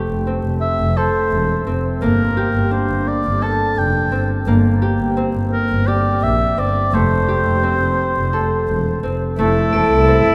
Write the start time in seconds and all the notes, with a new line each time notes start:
Already playing: A3 C4 G4 A4
0.09 F1
0.27 C4
0.43 F1
0.61 E5
0.79 F1
0.97 A4 C5
1.32 E1
1.67 F1 C4
2.02 G1 A#3 A#4
2.37 G4
2.54 G1
2.71 D4 C5
2.90 G1
3.08 D5
3.24 G1
3.42 A4 A5
3.77 F1 G5
4.12 G1 C4
4.47 G1 A#3
4.82 G4
4.99 G1
5.17 C4
5.34 G1
5.53 A#4
5.70 G1
5.87 G4 D5
6.22 A#1 E5
6.57 G1 C4 D5
6.92 F1 A3 C5
7.28 G4
7.45 F1
7.63 C4
7.80 F1
8.16 F1
8.33 A4
8.68 E1
9.03 F1 C4
9.38 F1 A3 E4 A4
9.73 E1 A4 D7
9.91 C2
10.08 C4
10.27 F1